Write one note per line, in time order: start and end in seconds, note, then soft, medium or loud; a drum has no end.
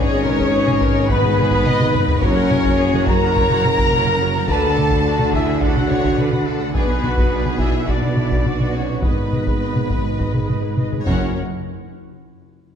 0.00 2.17 G#1 medium
0.00 2.18 G#1 medium
0.00 2.18 G#2 loud
0.00 1.05 C#4 loud
0.00 2.21 D#4 medium
0.00 0.23 G#4 loud
0.00 2.21 G#4 loud
0.00 2.21 B4 medium
0.00 1.06 C#5 loud
0.00 1.07 C#5 loud
0.00 1.11 C#5 loud
0.00 2.21 D#5 medium
0.10 0.24 G#4 medium
0.10 0.24 D#5 medium
0.23 0.38 D#4 medium
0.23 0.52 A#4 medium
0.23 0.38 B4 medium
0.23 taiko mid medium
0.38 0.52 G#4 medium
0.38 0.52 D#5 medium
0.38 taiko medium
0.52 0.66 D#4 medium
0.52 0.80 G#4 loud
0.52 0.66 B4 medium
0.66 0.80 G#4 medium
0.66 0.80 D#5 medium
0.66 taiko mid medium
0.80 0.95 D#4 medium
0.80 1.08 A#4 medium
0.80 0.95 B4 medium
0.80 taiko medium
0.95 1.09 G#4 medium
0.95 1.09 D#5 medium
1.08 2.05 B3 loud
1.08 1.22 D#4 medium
1.08 1.37 B4 loud
1.08 2.05 B4 loud
1.08 2.19 B4 loud
1.08 1.22 B4 medium
1.08 2.21 B4 loud
1.08 taiko medium
1.23 1.37 G#4 medium
1.23 1.37 D#5 medium
1.23 taiko mid medium
1.37 1.52 D#4 medium
1.37 1.65 G#4 medium
1.37 1.52 B4 medium
1.37 taiko mid medium
1.52 1.66 G#4 medium
1.52 1.66 D#5 medium
1.52 taiko medium
1.67 1.79 D#4 medium
1.67 1.79 B4 medium
1.67 1.94 D#5 loud
1.67 taiko mid loud
1.80 1.94 G#4 medium
1.80 1.94 D#5 medium
1.80 taiko mid loud
1.93 2.08 D#4 medium
1.93 2.21 B4 loud
1.93 2.08 B4 medium
1.93 taiko low-mid loud
2.07 2.21 G#4 medium
2.07 2.21 D#5 medium
2.07 taiko low loud
2.21 4.45 F#1 loud
2.21 4.45 F#1 medium
2.21 3.03 F#2 loud
2.21 4.45 F#2 loud
2.21 4.48 A#3 medium
2.21 3.06 C#4 loud
2.21 6.74 F#4 loud
2.21 2.35 F#4 medium
2.21 2.79 A#4 loud
2.21 3.07 C#5 loud
2.21 4.49 C#5 medium
2.21 3.06 C#5 loud
2.21 3.08 C#5 loud
2.21 2.35 C#5 medium
2.21 6.74 F#5 loud
2.21 taiko loud
2.36 2.50 A#4 medium
2.36 2.50 F#5 medium
2.51 2.65 F#4 medium
2.51 2.65 C#5 medium
2.51 taiko mid medium
2.65 2.79 A#4 medium
2.65 2.79 F#5 medium
2.65 taiko medium
2.79 2.93 F#4 medium
2.79 3.08 G#4 loud
2.79 2.93 C#5 medium
2.94 3.08 A#4 medium
2.94 3.08 F#5 medium
2.94 taiko mid medium
3.06 3.36 F#4 medium
3.06 3.23 F#4 medium
3.06 4.48 A#4 loud
3.06 3.23 C#5 medium
3.06 4.48 A#5 loud
3.06 4.49 A#5 loud
3.06 taiko medium
3.23 3.37 A#4 medium
3.23 3.37 F#5 medium
3.36 3.50 F#4 medium
3.36 3.64 C#5 loud
3.36 3.50 C#5 medium
3.36 taiko medium
3.50 3.65 A#4 medium
3.50 3.65 F#5 medium
3.50 taiko mid medium
3.64 3.79 F#4 medium
3.64 4.49 A#4 loud
3.64 3.79 C#5 medium
3.64 taiko mid medium
3.78 3.93 A#4 medium
3.78 3.93 F#5 medium
3.78 taiko medium
3.93 4.06 F#4 medium
3.93 4.06 C#5 medium
3.93 taiko mid medium
4.06 4.21 A#4 medium
4.06 4.21 F#5 medium
4.06 taiko mid medium
4.20 4.35 F#4 medium
4.20 4.35 C#5 medium
4.36 4.49 A#4 medium
4.36 4.49 F#5 medium
4.46 6.71 D2 medium
4.46 6.58 D2 medium
4.46 6.71 D3 medium
4.46 9.03 D4 medium
4.46 5.31 A4 loud
4.46 4.62 A4 medium
4.46 4.77 B4 loud
4.46 6.75 D5 medium
4.46 4.62 D5 medium
4.46 5.31 A5 loud
4.46 5.32 A5 loud
4.46 5.34 A5 loud
4.46 taiko loud
4.63 4.77 F#4 medium
4.63 4.77 F#5 medium
4.77 4.91 A4 medium
4.77 5.06 A4 medium
4.77 4.91 D5 medium
4.77 taiko mid medium
4.91 5.05 F#4 medium
4.91 5.05 F#5 medium
4.91 taiko medium
5.04 5.33 F#4 medium
5.04 5.18 A4 medium
5.04 5.18 D5 medium
5.17 5.32 F#4 medium
5.17 5.32 F#5 medium
5.17 taiko mid medium
5.31 5.62 E4 loud
5.31 5.62 G#4 medium
5.31 5.46 A4 medium
5.31 5.46 D5 medium
5.31 5.60 E5 medium
5.31 5.61 E5 medium
5.31 5.62 E5 loud
5.31 taiko medium
5.45 5.61 F#4 medium
5.45 5.61 F#5 medium
5.60 6.46 F#4 loud
5.60 5.74 A4 medium
5.60 5.90 A4 medium
5.60 5.74 D5 medium
5.60 6.45 F#5 medium
5.60 6.47 F#5 medium
5.60 taiko medium
5.75 5.90 F#4 medium
5.75 5.90 F#5 medium
5.75 taiko mid medium
5.89 6.04 A4 medium
5.89 6.19 C#5 medium
5.89 6.04 D5 medium
5.89 taiko mid medium
6.02 6.18 F#4 medium
6.02 6.18 F#5 medium
6.02 taiko medium
6.17 6.31 A4 medium
6.17 6.47 B4 medium
6.17 6.31 D5 medium
6.17 taiko mid medium
6.31 6.47 F#4 medium
6.31 6.46 F#5 medium
6.31 taiko mid medium
6.45 6.60 A4 medium
6.45 6.75 A4 medium
6.45 6.60 D5 medium
6.59 6.74 F#4 medium
6.59 6.74 F#5 medium
6.73 8.99 B1 medium
6.73 8.99 B2 medium
6.73 7.56 B3 loud
6.73 6.88 D4 medium
6.73 9.00 F#4 medium
6.73 7.03 G#4 medium
6.73 7.60 B4 loud
6.73 7.56 B4 loud
6.73 7.57 B4 loud
6.73 11.07 B4 medium
6.73 6.87 D5 medium
6.73 9.00 F#5 medium
6.73 taiko loud
6.89 7.03 F#4 medium
6.89 7.03 B4 medium
7.02 7.17 D4 medium
7.02 7.33 F#4 medium
7.02 7.17 D5 medium
7.02 taiko mid medium
7.16 7.31 F#4 medium
7.16 7.31 B4 medium
7.16 taiko medium
7.32 7.45 D4 medium
7.32 7.89 G#4 medium
7.32 7.45 D5 medium
7.45 7.60 F#4 medium
7.45 7.60 B4 medium
7.45 taiko mid medium
7.58 7.74 D4 medium
7.58 7.88 E4 loud
7.58 7.74 D5 medium
7.58 7.87 E5 medium
7.58 7.89 E5 medium
7.58 taiko medium
7.74 7.88 F#4 medium
7.74 7.88 B4 medium
7.86 8.73 D4 medium
7.86 8.02 D4 medium
7.86 8.17 F#4 medium
7.86 8.71 D5 medium
7.86 8.01 D5 medium
7.86 8.74 D5 medium
7.86 taiko medium
8.02 8.17 F#4 medium
8.02 8.17 B4 medium
8.02 taiko mid medium
8.15 8.31 D4 medium
8.15 8.45 E4 medium
8.15 8.30 D5 medium
8.15 taiko mid medium
8.30 8.45 F#4 medium
8.30 8.45 B4 medium
8.30 taiko medium
8.46 8.59 D4 medium
8.46 9.03 F#4 medium
8.46 8.59 D5 medium
8.46 taiko mid medium
8.60 8.75 F#4 medium
8.60 8.75 B4 medium
8.60 taiko mid medium
8.71 9.01 C#4 medium
8.71 8.89 D4 medium
8.71 9.03 C#5 medium
8.71 8.89 D5 medium
8.89 9.04 F#4 medium
8.89 9.00 B4 soft
9.00 11.02 G#1 medium
9.00 10.76 B3 medium
9.00 11.06 D#4 medium
9.00 11.07 G#4 medium
9.00 9.15 B4 medium
9.00 10.77 B4 medium
9.00 10.73 B4 medium
9.00 10.74 B4 medium
9.00 11.03 B4 medium
9.00 9.16 D#5 medium
9.00 taiko loud
9.04 11.03 G#2 medium
9.04 11.07 D#5 medium
9.16 9.32 G#4 medium
9.16 9.30 B4 medium
9.31 9.45 B4 medium
9.31 9.46 D#5 medium
9.31 taiko mid medium
9.46 9.61 G#4 soft
9.46 9.57 B4 medium
9.46 taiko medium
9.58 9.72 B4 medium
9.58 9.73 D#5 medium
9.73 9.89 G#4 soft
9.73 9.86 B4 soft
9.73 taiko mid medium
9.87 10.01 B4 soft
9.87 10.03 D#5 medium
9.87 taiko medium
10.02 10.18 G#4 soft
10.02 10.14 B4 soft
10.15 10.31 B4 medium
10.15 10.31 D#5 medium
10.15 taiko medium
10.32 10.48 G#4 soft
10.32 10.45 B4 medium
10.32 taiko mid medium
10.46 10.60 B4 medium
10.46 10.62 D#5 medium
10.46 taiko mid medium
10.61 10.77 G#4 medium
10.61 10.75 B4 soft
10.77 10.90 B4 medium
10.77 10.91 D#5 medium
10.77 taiko mid medium
10.91 11.06 G#4 medium
10.91 11.06 B4 soft
10.91 taiko mid medium
11.02 11.38 F#2 medium
11.02 11.28 F#4 medium
11.02 11.38 F#5 medium
11.06 11.38 F#1 medium
11.06 11.31 F#1 medium
11.06 11.33 F#2 medium
11.06 11.38 C#4 medium
11.06 11.39 C#4 medium
11.06 11.31 C#4 medium
11.06 11.39 F#4 medium
11.06 11.38 A#4 medium
11.06 11.39 C#5 medium
11.06 11.39 F#5 medium
11.06 taiko medium